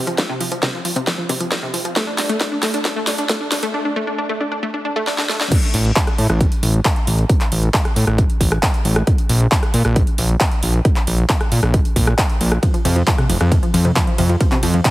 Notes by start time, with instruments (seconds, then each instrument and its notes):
0.07 synth arpeggio sound F3, closed hi-hat
0.18 synth arpeggio sound F3, kick, snare, closed hi-hat
0.29 synth arpeggio sound C3
0.41 synth arpeggio sound F3, open hi-hat
0.52 synth arpeggio sound F3, closed hi-hat
0.63 synth arpeggio sound C3, kick, snare, closed hi-hat
0.74 synth arpeggio sound F3
0.85 synth arpeggio sound F3, open hi-hat
0.96 synth arpeggio sound C3, closed hi-hat
1.07 synth arpeggio sound F3, kick, snare, closed hi-hat
1.18 synth arpeggio sound F3
1.29 synth arpeggio sound C3, kick, open hi-hat
1.40 synth arpeggio sound F3, closed hi-hat
1.52 synth arpeggio sound F3, kick, snare, closed hi-hat
1.63 synth arpeggio sound C3
1.74 synth arpeggio sound F3, open hi-hat
1.85 synth arpeggio sound F3, closed hi-hat
1.96 synth arpeggio sound A3, kick, snare, closed hi-hat
2.07 synth arpeggio sound D4
2.18 synth arpeggio sound D4, snare, open hi-hat
2.29 synth arpeggio sound A3, closed hi-hat
2.41 synth arpeggio sound D4, kick, snare, closed hi-hat
2.52 synth arpeggio sound D4
2.63 synth arpeggio sound A3, snare, open hi-hat
2.74 synth arpeggio sound D4, closed hi-hat
2.85 synth arpeggio sound D4, kick, snare, closed hi-hat
2.96 synth arpeggio sound A3
3.07 synth arpeggio sound D4, snare, open hi-hat
3.18 synth arpeggio sound D4, closed hi-hat
3.29 synth arpeggio sound A3, kick, snare, closed hi-hat
3.41 synth arpeggio sound D4
3.52 synth arpeggio sound D4, snare, open hi-hat
3.63 synth arpeggio sound A3, closed hi-hat
3.74 synth arpeggio sound D4
3.85 synth arpeggio sound D4
3.96 synth arpeggio sound A3
4.07 synth arpeggio sound D4
4.18 synth arpeggio sound D4
4.29 synth arpeggio sound A3
4.41 synth arpeggio sound D4
4.52 synth arpeggio sound D4
4.63 synth arpeggio sound A3
4.74 synth arpeggio sound D4
4.85 synth arpeggio sound D4
4.96 synth arpeggio sound A3
5.07 synth arpeggio sound D4, snare
5.18 synth arpeggio sound D4, snare
5.29 synth arpeggio sound A3, snare
5.40 synth arpeggio sound D4, snare
5.52 kick, closed hi-hat, crash
5.63 closed hi-hat
5.74 analog synth bass A1, open hi-hat
5.85 closed hi-hat
5.96 kick, clap, closed hi-hat
6.07 cross-stick, closed hi-hat
6.18 analog synth bass A2, open hi-hat
6.30 analog synth bass A1, cross-stick, closed hi-hat
6.41 kick, closed hi-hat
6.52 closed hi-hat
6.63 analog synth bass A1, open hi-hat
6.74 closed hi-hat
6.85 kick, clap, closed hi-hat
6.96 closed hi-hat
7.07 analog synth bass A1, open hi-hat
7.18 closed hi-hat
7.29 kick, closed hi-hat
7.41 clap, closed hi-hat
7.52 analog synth bass A1, open hi-hat
7.63 closed hi-hat
7.74 kick, clap, closed hi-hat
7.85 cross-stick, closed hi-hat
7.96 analog synth bass A2, open hi-hat
8.07 analog synth bass A1, cross-stick, closed hi-hat
8.18 kick, closed hi-hat
8.30 closed hi-hat
8.41 analog synth bass A1, kick, open hi-hat
8.52 cross-stick, closed hi-hat
8.63 kick, clap, closed hi-hat
8.74 closed hi-hat
8.85 analog synth bass A1, open hi-hat
8.96 cross-stick, closed hi-hat
9.07 kick, closed hi-hat
9.18 closed hi-hat
9.29 analog synth bass A#1, open hi-hat
9.41 closed hi-hat
9.52 kick, clap, closed hi-hat
9.63 cross-stick, closed hi-hat
9.74 analog synth bass A#2, open hi-hat
9.85 analog synth bass A#1, cross-stick, closed hi-hat
9.96 kick, closed hi-hat
10.07 closed hi-hat
10.18 analog synth bass A#1, open hi-hat
10.29 closed hi-hat
10.40 kick, clap, closed hi-hat
10.52 closed hi-hat
10.63 analog synth bass A#1, open hi-hat
10.74 closed hi-hat
10.85 kick, closed hi-hat
10.96 clap, closed hi-hat
11.07 analog synth bass A#1, open hi-hat
11.18 closed hi-hat
11.29 kick, clap, closed hi-hat
11.41 cross-stick, closed hi-hat
11.52 analog synth bass A#2, open hi-hat
11.63 analog synth bass A#1, cross-stick, closed hi-hat
11.74 kick, closed hi-hat
11.85 closed hi-hat
11.96 analog synth bass A#1, kick, open hi-hat
12.07 cross-stick, closed hi-hat
12.18 kick, clap, closed hi-hat
12.30 closed hi-hat
12.41 analog synth bass A#1, open hi-hat
12.52 cross-stick, closed hi-hat
12.63 synth arpeggio sound F3, kick, closed hi-hat, ride
12.74 synth arpeggio sound F3, closed hi-hat
12.85 analog synth bass F2, synth arpeggio sound C3, open hi-hat, ride
12.96 synth arpeggio sound F3, closed hi-hat
13.07 synth arpeggio sound F3, kick, clap, closed hi-hat, ride
13.18 synth arpeggio sound C3, cross-stick, closed hi-hat
13.29 analog synth bass F1, synth arpeggio sound F3, open hi-hat, ride
13.41 analog synth bass F2, synth arpeggio sound F3, cross-stick, closed hi-hat
13.52 synth arpeggio sound C3, kick, closed hi-hat, ride
13.63 synth arpeggio sound F3, closed hi-hat
13.74 analog synth bass F2, synth arpeggio sound F3, open hi-hat, ride
13.85 synth arpeggio sound C3, closed hi-hat
13.96 synth arpeggio sound F3, kick, clap, closed hi-hat, ride
14.07 synth arpeggio sound F3, closed hi-hat
14.18 analog synth bass F2, synth arpeggio sound C3, open hi-hat, ride
14.29 synth arpeggio sound F3, closed hi-hat
14.41 synth arpeggio sound F3, kick, closed hi-hat, ride
14.52 synth arpeggio sound C3, clap, closed hi-hat
14.63 analog synth bass F2, synth arpeggio sound F3, open hi-hat, ride
14.74 synth arpeggio sound F3, closed hi-hat
14.85 synth arpeggio sound C3, kick, clap, closed hi-hat, ride